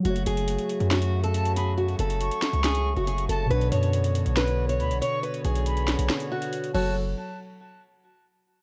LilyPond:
<<
  \new Staff \with { instrumentName = "Flute" } { \time 4/4 \key fis \minor \tempo 4 = 139 r2. a''8 b''8 | r4 cis'''2~ cis'''8 a''8 | r2. b''8 cis'''8 | r4 b''4 r4. a''8 |
r1 | }
  \new Staff \with { instrumentName = "Steel-string acoustic guitar" } { \time 4/4 \key fis \minor fis'8 gis'4. fis'8. a'8. gis'8 | fis'8 a'4. gis'8. fis'16 gis'8 a'8 | b'8 cis''4. b'8. cis''8. cis''8 | b'8 gis'2 fis'4 fis'8 |
r1 | }
  \new Staff \with { instrumentName = "Synth keys" } { \time 4/4 \key fis \minor <fis a fis' cis''>1~ | <fis a fis' cis''>1 | <b, b d' cis''>1~ | <b, b d' cis''>2.~ <b, b d' cis''>8 <fis fis' a' cis''>8 |
r1 | }
  \new Staff \with { instrumentName = "Harmonium" } { \time 4/4 \key fis \minor <cis fis a fis'>1~ | <cis fis a fis'>1 | <d b fis' cis''>1~ | <d b fis' cis''>2.~ <d b fis' cis''>8 <cis fis a fis'>8 |
r1 | }
  \new Staff \with { instrumentName = "808-style bass" } { \clef bass \time 4/4 \key fis \minor fis,,8 fis,,8. r8 fis,2~ fis,16~ | fis,8 fis,,8. r8 cis,4 fis,,8. fis,,8 | b,,8 fis,4~ fis,16 b,,4~ b,,16 d,16 b,,16 r8 | r8 b,,4~ b,,16 b,,16 r4. fis,,8~ |
fis,,8 r2. r8 | }
  \new DrumStaff \with { instrumentName = "Drums" } \drummode { \time 4/4 hh16 hh16 hh16 hh16 hh16 hh16 hh16 hh16 <hh sn>16 hh8 hh16 hh16 hh16 hh8 | hh16 hh16 hh16 hh16 hh16 hh16 <hh hho sn>16 hh16 <hh sn>16 hh8 hh16 hh16 hh16 hh8 | hh16 hh16 hh16 hh16 hh16 hh16 hh16 hh16 <hh sn>16 hh8 hh16 hh16 hh16 hh8 | hh16 hh16 hh16 hh16 hh16 hh16 <hh sn>16 hh16 <hh sn>16 hh8 hh16 hh16 hh16 cymc8 |
r4 r4 r4 r4 | }
>>